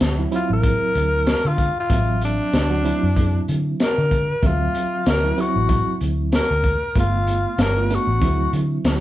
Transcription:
0.00 D2, snare, closed hi-hat
0.18 F#3 C4 E4
0.31 F#3 C4 E4 F4, closed hi-hat
0.50 A1 A#4
0.63 kick, closed hi-hat
0.95 D2, closed hi-hat
1.27 snare, closed hi-hat
1.45 D3 F4
1.58 kick, closed hi-hat
1.80 F4
1.90 A1 F#3 C4 E5, kick, closed hi-hat
2.22 D4, closed hi-hat
2.53 D2, snare, closed hi-hat
2.70 F#3 C4 F#4
2.85 F#3 C4 E4, closed hi-hat
3.03 F#2
3.17 kick, closed hi-hat
3.48 D3, closed hi-hat
3.80 A#4, snare, closed hi-hat
3.98 D3
4.11 kick, closed hi-hat
4.42 D2 F#3 C4 F4 E5, kick, closed hi-hat
4.75 closed hi-hat
5.06 D2 A#4, snare, closed hi-hat
5.23 F#3 C4 E4
5.38 F#3 C4 E4 F#4, closed hi-hat
5.56 A1
5.69 kick, closed hi-hat
6.01 D2, closed hi-hat
6.32 A#4, snare, closed hi-hat
6.51 D2
6.64 kick, closed hi-hat
6.96 G1 A3 B3 F4, kick, closed hi-hat
7.00 F4
7.27 closed hi-hat
7.58 G1, snare, closed hi-hat
7.62 A#4
7.77 A3 B3 F4
7.90 A3 B3 D4, closed hi-hat
7.95 F#4
8.07 A1
8.21 D2 F#3 C4 E4, kick, closed hi-hat
8.53 D3, closed hi-hat
8.84 D2, snare, closed hi-hat

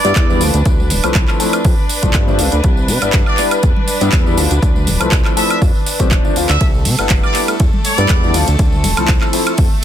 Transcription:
Already playing: D4 B4 D5
0.04 G2 G3 B3 D4 E4, closed hi-hat, tambourine, shaker
0.16 E2, kick, clap, closed hi-hat, shaker
0.29 G3 B3 D4 E4, tambourine
0.41 D2 F3 A3 C4 F4, open hi-hat, tambourine, shaker
0.54 D2, closed hi-hat, tambourine, shaker
0.65 D2, kick, closed hi-hat, tambourine, shaker
0.80 tambourine, high conga
0.90 D1, open hi-hat, tambourine, high conga, low conga, shaker
1.03 C2 F3 A3 C4 E4, closed hi-hat, tambourine, high woodblock, shaker
1.14 C2, kick, clap, closed hi-hat, tambourine, shaker
1.28 clap, tambourine, high woodblock
1.40 F3 A3 C4 E4, open hi-hat, tambourine, shaker
1.53 closed hi-hat, tambourine, high woodblock, shaker
1.65 F2, kick, open hi-hat, tambourine, low conga, shaker
1.89 open hi-hat, tambourine, shaker
2.03 C2 F3 A3 C4 D4, kick, closed hi-hat, shaker
2.13 G2, kick, clap, closed hi-hat, tambourine
2.27 F3 A3 C4 D4, tambourine, low conga
2.39 C2 F3 A3 C4 F4, open hi-hat, tambourine, shaker
2.52 D2, closed hi-hat, tambourine, shaker
2.64 C2, kick, closed hi-hat, tambourine, shaker
2.77 tambourine
2.88 C3, open hi-hat, tambourine, high conga, shaker
3.02 G1 G3 B3 D4 E4, closed hi-hat, tambourine, high woodblock, shaker
3.13 G1, kick, clap, closed hi-hat, tambourine, shaker
3.26 D5, tambourine, high woodblock
3.37 G3 B3 D4 E4, clap, open hi-hat, tambourine, shaker
3.51 closed hi-hat, tambourine, high woodblock, shaker
3.63 E2, kick, closed hi-hat, tambourine, shaker
3.77 high conga
3.88 open hi-hat, tambourine, shaker
4.01 G2 G3 B3 D4 E4, closed hi-hat, tambourine, shaker
4.12 E2, kick, clap, closed hi-hat, tambourine, shaker
4.26 G3 B3 D4 E4, tambourine
4.37 D2 F3 A3 C4 F4, open hi-hat, tambourine, shaker
4.51 D2, closed hi-hat, tambourine, shaker
4.62 D2, kick, closed hi-hat, tambourine, shaker
4.76 tambourine, high conga
4.87 D1, open hi-hat, tambourine, high conga, low conga, shaker
5.00 C2 F3 A3 C4 E4, closed hi-hat, tambourine, high woodblock, shaker
5.12 C2, kick, clap, closed hi-hat, tambourine, shaker
5.25 clap, tambourine, high woodblock
5.36 F3 A3 C4 E4 E5, open hi-hat, tambourine, shaker
5.50 E5, closed hi-hat, tambourine, high woodblock, shaker
5.62 F2, kick, open hi-hat, tambourine, low conga, shaker
5.75 tambourine
5.86 open hi-hat, tambourine, shaker
5.99 C2 F3 A3 C4 D4, kick, closed hi-hat, tambourine, shaker
6.11 D1, kick, clap, closed hi-hat, tambourine, shaker
6.24 F3 A3 C4 D4, tambourine, low conga
6.36 D2 F3 A3 C4 F4, open hi-hat, tambourine, shaker
6.49 D2 E5, clap, closed hi-hat, tambourine, shaker
6.61 C2 A3 A4, kick, closed hi-hat, ride, tambourine, shaker
6.74 tambourine
6.85 C3, open hi-hat, ride, tambourine, high conga, shaker
6.99 G1 G3 B3 D4 E4, closed hi-hat, tambourine, high woodblock, shaker
7.10 G1, kick, clap, closed hi-hat, ride, tambourine
7.23 D5, tambourine, high woodblock
7.34 G3 B3 D4 E4, clap, open hi-hat, ride, tambourine, shaker
7.48 closed hi-hat, tambourine, high woodblock, shaker
7.60 E2, kick, closed hi-hat, ride, tambourine, shaker
7.73 high conga
7.84 D5, open hi-hat, ride, tambourine, shaker
7.98 G2 G3 B3 D4 E4, closed hi-hat, tambourine, shaker
8.09 E2, kick, clap, closed hi-hat, ride, tambourine, shaker
8.22 G3 B3 D4 E4, tambourine
8.34 D2 F3 A3 C4 F4, open hi-hat, ride, tambourine, shaker
8.47 D2, closed hi-hat, tambourine, shaker
8.59 D2, kick, closed hi-hat, ride, tambourine, shaker
8.72 tambourine, high conga
8.84 D1, open hi-hat, ride, tambourine, high conga, low conga, shaker
8.97 C2 F3 A3 C4 E4, closed hi-hat, tambourine, high woodblock, shaker
9.08 C2, kick, clap, closed hi-hat, ride, tambourine, shaker
9.21 clap, tambourine, high woodblock
9.33 F3 A3 C4 E4, open hi-hat, ride, tambourine, shaker
9.46 closed hi-hat, tambourine, high woodblock, shaker
9.57 F2, kick, open hi-hat, ride, tambourine, low conga, shaker

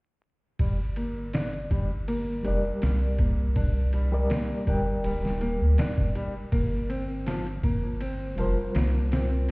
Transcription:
0.59 G1 G3, kick, ride
0.96 A#3, ride
1.33 D4, snare, ride
1.53 ride
1.71 G1 G3, kick, ride
2.08 A#3, ride
2.43 F1 G3 D4 G4 A#4, ride
2.48 D5
2.82 C2 G3, snare, ride
3.18 A#3, kick, ride
3.56 D4, kick, ride
3.93 G3, ride
4.12 G3 G4 A#4 D5
4.30 A#3, snare, ride
4.65 G1 G3 D4 G4 A#4, kick, ride
4.70 G5
5.04 D1 G3, ride
5.25 snare
5.41 A#3, ride
5.61 D2
5.78 D4, snare, ride
5.98 kick
6.15 G3, ride
6.52 G1 A#3, kick, ride, shaker
6.72 shaker
6.89 C4, ride, shaker
7.08 shaker
7.26 F3, snare, ride, shaker
7.46 ride
7.63 G1 A#3, kick, ride, shaker
7.83 shaker
8.00 C4, ride, shaker
8.36 F1 F3 G3 F4 A#4, ride, shaker
8.40 C5
8.57 shaker
8.75 C2 A#3, snare, ride, shaker
9.12 C4, snare, ride, shaker
9.32 shaker

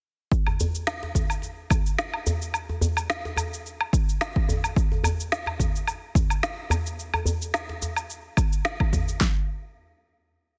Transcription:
0.32 kick, shaker
0.47 djembe tone, low woodblock
0.60 djembe bass, shaker
0.75 shaker
0.87 snare, low woodblock, shaker
1.03 djembe slap
1.15 kick, djembe tone, shaker
1.30 low woodblock, shaker
1.42 djembe slap, shaker
1.70 kick, djembe slap, djembe tone, low woodblock, shaker
1.86 shaker
1.99 snare, shaker
2.14 low woodblock
2.26 djembe bass, shaker
2.42 shaker
2.54 low woodblock, shaker
2.69 djembe tone
2.81 djembe bass, shaker
2.97 low woodblock, shaker
3.10 snare, shaker
3.25 djembe slap
3.36 djembe tone, low woodblock, shaker
3.53 shaker
3.66 shaker
3.81 low woodblock
3.93 kick, shaker
4.09 shaker
4.21 snare, low woodblock, shaker
4.36 kick
4.49 djembe tone, djembe bass, shaker
4.64 low woodblock, shaker
4.76 kick, shaker
4.92 djembe tone
5.04 djembe bass, low woodblock, shaker
5.20 shaker
5.32 snare, shaker
5.46 djembe slap, low woodblock
5.59 kick, djembe tone, shaker
5.76 shaker
5.88 djembe slap, low woodblock, shaker
6.15 kick, djembe slap, djembe tone, shaker
6.30 low woodblock, shaker
6.43 snare, shaker
6.70 djembe bass, low woodblock, shaker
6.86 shaker
6.99 shaker
7.14 djembe tone, low woodblock
7.25 djembe bass, shaker
7.42 shaker
7.54 snare, low woodblock, shaker
7.69 djembe slap
7.82 djembe tone, shaker
7.96 low woodblock, shaker
8.10 shaker
8.37 kick, djembe slap, low woodblock, shaker
8.53 shaker
8.65 snare, shaker
8.80 kick, low woodblock
8.92 kick, djembe tone, djembe bass, shaker
9.08 shaker
9.21 kick, snare, clap

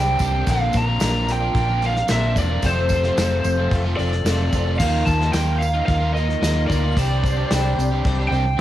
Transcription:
Already playing: C2 C3 G3 C4 D4 G4 C5 G5
0.19 C2 G3 C4 D4 G4 C5, kick, open hi-hat, tambourine
0.24 C4
0.34 C4 D4 G4
0.46 A#1 A#2 D3 F3 A#3 C4 D4 F4 A#4, kick, open hi-hat, tambourine
0.51 F5
0.73 A#1 C4 D4 A#4 A#5, kick, open hi-hat, tambourine
0.77 F3
0.87 A#3 D4 F4
1.00 A#1 A#2 D3 F3 A#3 C4 D4 F4, snare, open hi-hat, tambourine
1.04 A#4
1.28 muted overdriven electric guitar stroke, snare, open hi-hat, tambourine
1.32 G5
1.41 A#3 D4 F4
1.55 A#1 F3 C4 D4 A#4, kick, open hi-hat, tambourine
1.69 A#3 D4 F4
1.82 D3 F3 A#3 C4 D4 F4 A#4, open hi-hat, tambourine
1.86 F5
1.96 muted overdriven electric guitar stroke, snare
2.08 A#1 A#2 D3 F3 A#3 C4 D4 F4 A#4 E5, snare, open hi-hat, tambourine
2.36 E1 D3 F3 A#3 C4 D4 F4 A#4 D5, kick, open hi-hat, tambourine
2.50 A#3 D4 F4
2.62 F1 F2 C3 F3 A3 C4 F4 A4 C5, kick, open hi-hat, tambourine
2.89 F4 A4, kick, open hi-hat, tambourine
2.93 C4
3.03 F3 A3 C4 F4, snare
3.17 F1 F2 C3 F3 A3 C4 F4 A4, snare, open hi-hat, tambourine
3.44 F1, muted overdriven electric guitar stroke, open hi-hat, tambourine
3.58 F3 A3 C4 F4
3.71 F1 F3 C4 F4 A4, kick, open hi-hat, tambourine
3.85 F3 A3 C4 F4
3.97 F1 F3 A3 C4 F4 A4 D5, open hi-hat, tambourine
4.02 C4
4.13 muted overdriven electric guitar stroke, snare
4.24 F1 F2 C3 F3 A3 C4 F4, snare, open hi-hat, tambourine
4.28 F3 C4 F4 A4
4.52 F1 F3 A3 C4 F4 A4, kick, open hi-hat, tambourine
4.56 C4 F4
4.66 F3 A3 C4 F4
4.78 D#2 D#3 F3 A#3 D#4 F4 A#4 F5, kick, crash, tambourine
5.05 D#2 A5, kick, open hi-hat, tambourine
5.10 A#3 F4 A#4
5.20 A#3 D#4 F4, snare
5.32 D#2 D#3 F3 A#3 D#4 F4 A#4 G5, snare, open hi-hat, tambourine
5.59 F5, muted overdriven electric guitar stroke, open hi-hat, tambourine
5.74 A#3 D#4 F4
5.86 D#2 F3 A#3 F5, kick, open hi-hat, tambourine
5.91 F4 A#4
6.01 A#3 D#4 F4
6.14 D#3 A#3 D#4 F4 A#4 D#5, open hi-hat, tambourine
6.18 A#3 F4
6.28 muted overdriven electric guitar stroke, snare
6.42 D#2 D#3 F3 A#3 D#4 F4, snare, open hi-hat, tambourine
6.46 A#4
6.68 D2 D#3 A#3 D#4 F4 A#4 D5, kick, open hi-hat
6.72 A#3, tambourine
6.83 A#3 D#4 F4
6.96 C2 C3 G3 C4 D4 G4 C5, kick, open hi-hat, tambourine
7.24 C4 D4 C5, kick, open hi-hat, tambourine
7.37 C4 D4 G4
7.51 C2 C3 G3 C4 D4 G4 C5, snare, open hi-hat, tambourine
7.78 C2, muted overdriven electric guitar stroke, snare, open hi-hat, tambourine
7.91 C4 D4 G4
8.04 C2 G3 C4 D4 C5, kick, open hi-hat, tambourine
8.19 C4 D4 G4
8.28 C2 G3 C5 G5
8.32 C4 D4 G4, open hi-hat, tambourine
8.45 muted overdriven electric guitar stroke

